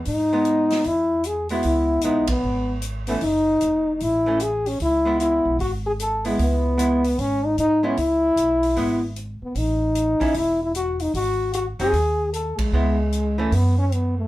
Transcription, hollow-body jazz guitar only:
X:1
M:4/4
L:1/8
Q:"Swing" 1/4=151
K:C#m
V:1 name="Hollow-body jazz guitar"
z [G,B,]3 z3 [G,B,E]- | [G,B,E]2 [G,B,E] z4 [E,A,C] | z4 z [E,A,C] z2 | z [G,B,E]3 z3 [G,B,E]- |
[G,B,E]2 [G,B,E] z4 [G,B,E] | z4 [G,B,E] z3 | z3 [=G,CE] z4 | z3 [F,^B,D] z4 |
[G,B,E] z2 [E,A,C] z4 |]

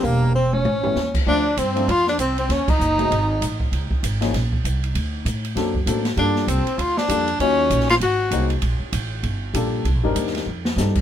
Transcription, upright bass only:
X:1
M:4/4
L:1/8
Q:"Swing" 1/4=196
K:Dphr
V:1 name="Upright bass" clef=bass
=E,,,4 A,,,2 _E,,2 | D,,2 G,,2 F,,2 C,,2 | E,, z _G,,,2 _A,,,2 =A,,,2 | _D,, z _A,,,2 B,,,2 C,,2 |
D,,2 A,,2 ^F,,2 A,,2 | G,,2 C,, z D,,2 F,,2 | E,,2 B,,,2 _A,,,2 C,,2 | B,,, z A,,,2 G,,,2 B,,,2 |
(3C,, B,,, G,,, E,,2 F,,2 G,,2 |]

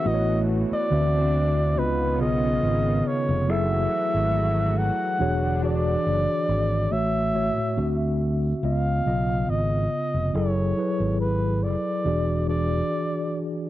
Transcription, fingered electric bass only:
X:1
M:4/4
L:1/16
Q:"Swing 16ths" 1/4=70
K:C#m
V:1 name="Fingered electric bass" clef=bass
A,,,3 z =D,,4 C,,2 B,,,2 G,,,2 z ^E,,, | F,,,2 z G,,,4 z E,,,4 F,,, z G,,,2 | A,,,3 z =D,,4 C,,2 B,,,2 G,,,2 z ^E,,, | F,,,2 z G,,,4 z E,,,4 z4 |]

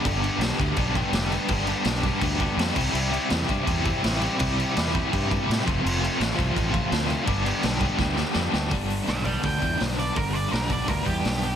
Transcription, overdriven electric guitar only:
X:1
M:4/4
L:1/8
Q:1/4=166
K:Gmix
V:1 name="Overdriven electric guitar"
[G,,D,G,B,DG] [G,,D,G,B,DG] [G,,D,G,B,DG] [G,,D,G,B,DG] [G,,D,G,B,DG] [G,,D,G,B,DG] [G,,D,G,B,DG] [G,,D,G,B,DG] | [G,,D,G,B,DG] [G,,D,G,B,DG] [G,,D,G,B,DG] [G,,D,G,B,DG] [G,,D,G,B,DG] [G,,D,G,B,DG] [G,,D,G,B,DG] [C,G,CEG] | [C,G,CEG] [C,G,CEG] [C,G,CEG] [C,G,CEG] [C,G,CEG] [C,G,CEG] [C,G,CEG] [C,G,CEG] | [C,G,CEG] [C,G,CEG] [C,G,CEG] [C,G,CEG] [C,G,CEG] [C,G,CEG] [C,G,CEG] [F,,C,F,A,CF] |
[F,,C,F,A,CF] [F,,C,F,A,CF] [F,,C,F,A,CF] [F,,C,F,A,CF] [F,,C,F,A,CF] [F,,C,F,A,CF] [F,,C,F,A,CF] [F,,C,F,A,CF] | [G,,D,G,B,DG] [G,,D,G,B,DG] [G,,D,G,B,DG] [G,,D,G,B,DG] [G,,D,G,B,DG] [G,,D,G,B,DG] [G,,D,G,B,DG] [G,,D,G,B,DG] | [G,,D,G,B,D] [G,B,D] [D,G,B,D] [G,,D,G,B,D] [D,G,B,D] [G,,D,G,B,D] [D,G,B,D] [G,B,D] | [G,,D,G,B,D] [G,B,D] [D,G,B,D] [G,,D,G,B,D] [D,G,B,D] [G,,D,G,B,D] [D,G,B,D] [G,B,D] |]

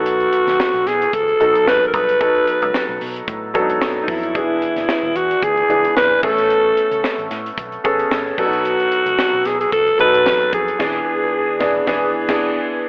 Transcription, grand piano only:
X:1
M:4/4
L:1/16
Q:"Swing 16ths" 1/4=112
K:Bdor
V:1 name="Grand piano"
[F,B,^DA]4 z6 [F,B,DA]4 z2 | [F,B,^DA]4- [F,B,DA] z4 z [F,B,=D^DA]4 z2 | [E,B,DG]4- [E,B,DG] z4 z [E,B,DG]4 [A,B,CA]2- | [A,B,CA]4 z6 [B,CGA]4 [F,B,D^DA]2- |
[F,B,D^DA]4 z6 [F,B,DA]4 z2 | [E,B,DG]2 z4 [E,B,DG]2 [E,B,DG]2 z [E,B,DG]2 z3 |]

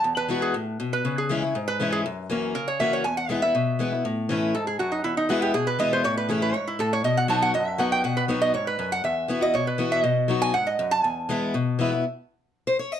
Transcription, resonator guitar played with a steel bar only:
X:1
M:4/4
L:1/16
Q:1/4=240
K:E
V:1 name="Resonator guitar played with a steel bar"
z2 B4 G2 z6 B2- | B2 G2 z6 B4 G2 | z8 ^A2 c2 e2 c2 | g2 f2 e2 e8- e z |
z8 A2 G2 F2 D2 | E2 D2 F2 =G2 ^G2 B2 d2 =c2 | c2 B2 G2 B2 c2 E2 A2 c2 | d2 f2 a2 f2 d2 e2 f2 =g2 |
f2 B2 z2 d2 c2 B4 f2 | e6 d2 c2 B4 e2 | d6 g2 f2 d4 a2 | g6 z8 z2 |
z16 |]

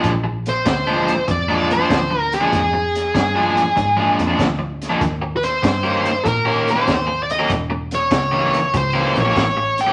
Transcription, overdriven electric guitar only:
X:1
M:4/4
L:1/16
Q:"Swing" 1/4=97
K:Bbmix
V:1 name="Overdriven electric guitar"
z4 z [B,,F,A,D] z3 [B,,F,A,D] z [B,,F,A,D] z3 [B,,F,A,D] | z4 z [B,,F,A,D] z3 [B,,F,A,D] z [B,,F,A,D] z3 [B,,F,A,D] | z4 z [E,B,_DG] z3 [E,B,DG] z [E,B,DG] z3 [E,B,DG] | z4 z [=E,B,^CG] z3 [E,B,CG] z [E,B,CG] z3 [E,B,CG] |]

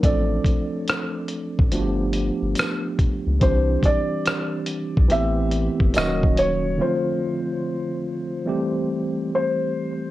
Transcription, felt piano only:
X:1
M:4/4
L:1/8
Q:"Swing 16ths" 1/4=71
K:C
V:1 name="Felt piano"
d6 z2 | c d3 e2 _e _d | c6 c2 |]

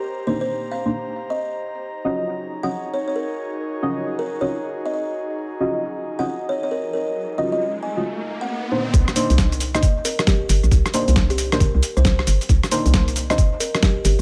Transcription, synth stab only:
X:1
M:4/4
L:1/16
Q:"Swing 16ths" 1/4=135
K:Cm
V:1 name="Synth stab"
z2 [B,DEc]4- [B,DEc] [B,DEc] z8 | z2 [_DF_Ge]4- [DFGe] [DFGe] z8 | z2 [_DF_Ge]4- [DFGe] [DFGe] z8 | z2 [_DF_Ge]4- [DFGe] [DFGe] z8 |
z2 [_DF_Ge]4- [DFGe] [DFGe] z6 [B,=DEc]2- | [B,DEc]2 [B,DEc]4- [B,DEc] [B,DEc] z8 | z2 [B,DEc]4- [B,DEc] [B,DEc] z8 | z2 [B,DEc]4- [B,DEc] [B,DEc] z8 |]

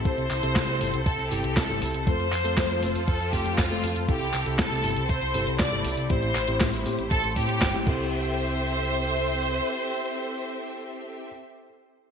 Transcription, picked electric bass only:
X:1
M:4/4
L:1/16
Q:1/4=119
K:C
V:1 name="Picked electric bass" clef=bass
C,, C,, C,, C,, C,, C,, G,,, C,, C,, C,, G,,, C,, C,, G,,, C,, C,, | F,, F,, F,, F,, F,, F,, F,,, F,, F,, F,, F,,, F,, F,, F,,, F,, F,, | C,, C,, C,, C,, C,, C,, G,,, C,, C,, C,, G,,, C,, C,, G,,, C,, C,, | A,,, A,,, A,,, A,,, A,,, A,,, A,, A,,, A,,, A,,, A,, A,, G,,, A,,, C,,2- |
C,,12 z4 | z16 |]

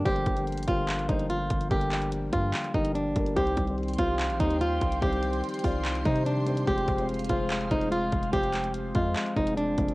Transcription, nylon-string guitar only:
X:1
M:4/4
L:1/8
Q:1/4=145
K:Gphr
V:1 name="Nylon-string guitar"
G2 z F2 E F2 | G2 z F2 E D2 | G2 z F2 E F2 | G2 z F2 E D2 |
G2 z F2 E F2 | G2 z F2 E D2 |]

